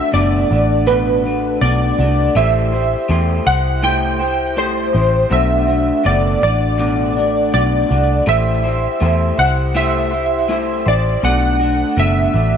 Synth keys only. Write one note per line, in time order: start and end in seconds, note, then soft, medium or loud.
0.14 0.90 D5 medium
0.87 1.57 B4 medium
1.61 2.38 D5 medium
2.36 3.06 E5 medium
3.47 3.81 F#5 loud
3.84 4.60 G5 loud
4.58 5.34 C5 medium
5.32 6.08 E5 medium
6.06 6.42 D5 medium
6.43 7.53 D5 loud
7.54 8.30 D5 medium
8.29 9.42 E5 loud
9.39 9.53 F#5 loud
9.76 10.90 E5 loud
10.88 11.25 D5 medium
11.25 12.00 F#5 loud
11.99 12.57 E5 medium